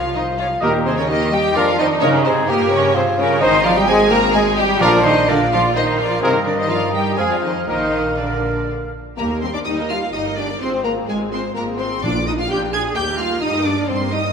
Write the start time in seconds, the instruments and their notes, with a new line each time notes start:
Already playing: double bass section C2, cello section F3, viola section F4, bassoon F4, violin section F5
0.15 cello section D#3, viola section D#4, violin section D#4 D#5, flute C5
0.38 cello section F3, violin section F4 F5, viola section F4, flute C#5
0.61 double bass section D#2, cello section A#2, timpani D#3, french horn section G3 D#4, violin section A#3 A#4, viola section A#3, bassoon D#4, clarinet G4, flute G4, trumpet section A#4, oboe D#5
0.85 cello section C3, viola section C4, violin section C4 C5, flute G#4
0.97 cello section C#3, viola section C#4, violin section C#4 C#5, flute A#4
1.08 cello section D#3, viola section D#4, violin section D#4 D#5, bassoon G4, flute A#4
1.32 cello section G3, viola section G4, violin section G4 G5, flute D#5
1.55 double bass section F2, cello section F3, french horn section G#3 D4, bassoon D4, viola section F4, violin section F4 F5, trumpet section A#4, clarinet A#4, oboe D5, flute D5
1.78 cello section D#3, viola section D#4, violin section D#4 D#5, flute C5
2.01 double bass section G2, cello section C#3, french horn section A#3 D#4, viola section C#4, violin section C#4 C#5, bassoon D#4, trumpet section A#4, clarinet A#4, flute A#4, oboe D#5
2.25 cello section C3, viola section C4, violin section C4 C5, flute G#4
2.47 cello section A#2, viola section A#3, violin section A#3 A#4, bassoon G4, flute G4
2.70 cello section C#3, viola section C#4, violin section C#4 C#5, flute A#4
2.94 cello section C3, violin section C4 C5, viola section C4, bassoon F4, flute G#4
3.16 cello section C#3, violin section C#4 C#5, viola section C#4, flute A#4
3.40 double bass section G#1, cello section D#3, french horn section G#3 D#4, bassoon D#4, viola section D#4, violin section D#4 D#5, trumpet section C5, flute C5, clarinet C5, oboe D#5
3.64 cello section F3, violin section F4 F5, viola section F4, flute D5
3.75 cello section G3, violin section G4 G5, viola section G4, flute D#5
3.86 cello section G#3, bassoon C4, violin section G#4 G#5, viola section G#4, flute D#5
4.09 cello section A#3, violin section A#4 A#5, viola section A#4, flute G5
4.33 cello section G#3, violin section G#4 G#5, viola section G#4, flute D#5
4.56 cello section G3, violin section G4 G5, viola section G4, flute D#5
4.80 double bass section A#1, timpani A#2, french horn section F3 D4, cello section F3, bassoon D4, violin section F4 F5, viola section F4, trumpet section A#4, clarinet A#4, flute D5, oboe D5
5.04 cello section D#3, violin section D#4 D#5, viola section D#4, flute C5
5.28 cello section D3, violin section D4 D5, viola section D4, bassoon F4, flute A#4
5.51 cello section F3, viola section F4, violin section F4 F5, flute D5
5.75 cello section D#3, bassoon A#3, violin section D#4 D#5, viola section D#4, flute C5
5.99 cello section F3, violin section F4 F5, viola section F4, flute D5
6.22 double bass section G2, cello section C3, french horn section D#3 D#4, viola section C4, violin section C4 C5, flute G#4, trumpet section A#4, clarinet A#4, oboe D#5
6.44 cello section D3, viola section D4, violin section D4 D5, flute A#4
6.57 cello section D#3, viola section D#4, violin section D#4 D#5, flute C5
6.68 cello section F3, bassoon D#4, viola section F4, violin section F4 F5, flute D5
6.92 cello section G3, viola section G4, violin section G4 G5, flute D#5
7.16 double bass section F2, french horn section F3 C4, cello section G#3, bassoon C4, viola section G#4, trumpet section G#4, violin section G#4 G#5, clarinet C5, oboe F5, flute F5
7.28 cello section F3, viola section F4, violin section F4 F5
7.33 flute D5
7.41 cello section D#3, viola section D#4, violin section D#4 D#5
7.46 flute C5
7.67 double bass section A#1, cello section D#3, french horn section F3 A#3, bassoon A#3, viola section D#4, violin section D#4 D#5, trumpet section A#4, clarinet A#4, flute C5, oboe F5
8.17 cello section D3, viola section D4, violin section D4 D5, clarinet A#4, flute A#4, oboe F5
9.17 double bass section D#2, viola section G3 G4, french horn section A#3, cello section A#3, violin section A#4 A#5
9.30 viola section A#3 A#4
9.41 viola section G3 G4, french horn section C4, cello section C4, violin section C5 C6
9.53 viola section A#3 A#4, french horn section D4, cello section D4, violin section D5 D6
9.65 double bass section D#2, viola section G3 G4, cello section D#4, french horn section D#4, violin section D#5 D#6
9.79 viola section A#3 A#4
9.90 viola section G3 G4, french horn section F4, cello section F4, violin section F5 F6
10.03 viola section A#3 A#4
10.13 double bass section G1, viola section G3 G4, cello section D#4, french horn section D#4, violin section D#5 D#6
10.26 viola section A#3 A#4
10.37 viola section G3 G4, cello section D4, french horn section D4, violin section D5 D6
10.49 viola section A#3 A#4
10.60 double bass section G#1, viola section G#3 F4, french horn section C4, cello section C4, violin section C5 C6
10.73 viola section C4 G#4
10.83 viola section G#3 F4, cello section A#3, french horn section A#3, violin section A#4 A#5
10.96 viola section C4 G#4
11.06 double bass section G#1, cello section G#3, viola section G#3 F4, french horn section G#3, violin section G#4 G#5
11.20 viola section C4 G#4
11.32 viola section G#3 F4, cello section C4, french horn section C4, violin section C5 C6
11.44 viola section C4 G#4
11.54 double bass section G#1, viola section G#3 F4, french horn section A#3, cello section A#3, violin section A#4 A#5
11.67 viola section C4 G#4
11.77 viola section G#3 F4, french horn section C4, cello section C4, violin section C5 C6
11.90 viola section C4 G#4
12.02 double bass section A#1, timpani A#2, french horn section D4, viola section D4 F4, cello section D4, violin section D5 D6
12.14 viola section A#3 D4
12.26 viola section D4 F4, french horn section D#4, cello section D#4, violin section D#5 D#6
12.38 viola section A#3 D4, french horn section F4, cello section F4, violin section F5 F6
12.48 double bass section A#1, viola section D4 F4, french horn section G4, cello section G4, violin section G5 G6
12.61 viola section A#3 D4
12.72 viola section D4 F4, french horn section G#4, cello section G#4, violin section G#5 G#6
12.85 viola section A#3 D4
12.95 double bass section D#2, viola section G3 G4, french horn section G4, cello section G4, violin section G5 G6
13.08 viola section A#3 A#4
13.18 viola section G3 G4, cello section F4, french horn section F4, violin section F5 F6
13.31 viola section A#3 A#4
13.42 double bass section G2, viola section G3 G4, french horn section D#4, cello section D#4, violin section D#5 D#6
13.55 viola section A#3 A#4
13.64 viola section G3 G4, cello section D4, french horn section D4, violin section D5 D6
13.78 viola section A#3 A#4
13.88 double bass section G2, viola section G3 G4, french horn section C4, cello section C4, violin section C5 C6
14.00 viola section A#3 A#4
14.11 viola section G3 G4, cello section D#4, french horn section D#4, violin section D#5 D#6
14.23 viola section A#3 A#4